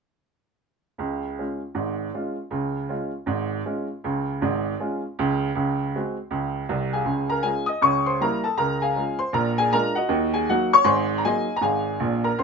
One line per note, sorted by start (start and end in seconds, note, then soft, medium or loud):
0.98 1.32 C#2 medium
0.98 1.32 C#3 medium
1.38 1.59 G#3 soft
1.38 1.60 C#4 soft
1.38 1.60 F4 soft
1.75 2.08 G#1 medium
1.75 2.08 G#2 medium
2.14 2.35 G#3 soft
2.14 2.35 C#4 soft
2.14 2.36 F4 soft
2.51 2.84 C#2 medium
2.51 2.84 C#3 medium
2.89 3.11 G#3 soft
2.89 3.10 C#4 soft
2.89 3.11 F4 soft
3.26 3.59 G#1 medium
3.26 3.60 G#2 medium
3.65 3.87 G#3 medium
3.65 3.87 C#4 soft
3.65 3.87 F4 soft
4.04 4.35 C#2 medium
4.04 4.34 C#3 medium
4.42 4.72 G#1 medium
4.42 4.72 G#2 medium
4.80 5.01 G#3 medium
4.80 5.01 C#4 soft
4.80 5.01 F4 medium
5.19 5.49 C#2 medium
5.19 5.49 C#3 medium
5.55 5.88 C#2 medium
5.55 5.88 C#3 medium
5.95 6.16 G#3 soft
5.95 6.16 C4 soft
5.95 6.16 F#4 medium
6.31 6.63 C#2 medium
6.31 6.63 C#3 medium
6.69 7.00 C2 medium
6.69 6.99 C3 medium
6.93 7.29 G#4 soft
6.93 7.29 F5 soft
6.93 7.31 G#5 medium
7.05 7.38 C#2 medium
7.05 7.38 C#3 medium
7.30 7.44 A#4 medium
7.30 7.45 A#5 medium
7.43 7.64 G#3 soft
7.43 7.64 C#4 soft
7.43 7.65 F4 soft
7.43 7.67 G#4 medium
7.43 7.68 G#5 medium
7.66 7.82 D#5 medium
7.66 7.82 D#6 medium
7.81 8.14 C#2 medium
7.81 8.15 C#3 medium
7.81 8.05 C#5 medium
7.81 8.06 C#6 medium
8.06 8.20 C5 medium
8.06 8.21 C6 medium
8.20 8.41 G3 medium
8.20 8.42 A#3 soft
8.20 8.43 E4 soft
8.20 8.44 A#4 medium
8.20 8.45 A#5 medium
8.44 8.58 A4 medium
8.44 8.58 A5 medium
8.57 8.91 C#2 medium
8.57 8.90 C#3 medium
8.57 8.81 A#4 medium
8.57 8.82 A#5 medium
8.82 9.18 G#4 soft
8.82 9.18 F5 medium
8.82 9.20 G#5 medium
8.96 9.17 G#3 soft
8.96 9.17 C#4 soft
8.96 9.18 F4 soft
9.19 9.33 C5 medium
9.19 9.34 C6 medium
9.33 9.66 A#1 medium
9.33 9.66 A#2 medium
9.33 9.57 A#4 medium
9.33 9.58 A#5 medium
9.58 9.72 G#4 medium
9.58 9.73 G#5 medium
9.73 9.94 G#3 medium
9.73 9.94 D4 medium
9.73 9.94 F4 medium
9.73 9.96 A#4 medium
9.73 9.96 A#5 medium
9.95 10.32 F#4 medium
9.95 10.32 D#5 medium
9.95 10.34 F#5 medium
10.09 10.42 D#2 medium
10.09 10.42 D#3 medium
10.34 10.47 G#4 medium
10.34 10.48 G#5 medium
10.49 10.70 F#3 medium
10.49 10.70 A#3 soft
10.49 10.70 D#4 soft
10.49 10.72 F#4 medium
10.49 10.73 F#5 medium
10.73 10.86 C#5 medium
10.73 10.87 C#6 medium
10.84 11.18 G#1 medium
10.84 11.18 G#2 medium
10.84 11.15 C5 medium
10.84 11.15 G#5 medium
10.84 11.16 C6 medium
11.18 11.25 A#5 medium
11.25 11.46 F#3 soft
11.25 11.46 A#3 soft
11.25 11.46 D#4 soft
11.25 11.54 G#4 medium
11.25 11.55 D#5 medium
11.25 11.56 G#5 medium
11.56 11.63 A#5 medium
11.61 11.95 G#1 medium
11.61 11.94 G#2 medium
11.61 12.20 G#4 medium
11.61 12.21 F5 medium
11.61 12.24 G#5 medium
12.00 12.29 A#1 medium
12.00 12.29 A#2 medium
12.24 12.38 A#4 medium
12.24 12.39 A#5 medium
12.38 12.43 C#2 medium
12.38 12.43 C#3 medium
12.38 12.43 C5 medium
12.38 12.43 C6 medium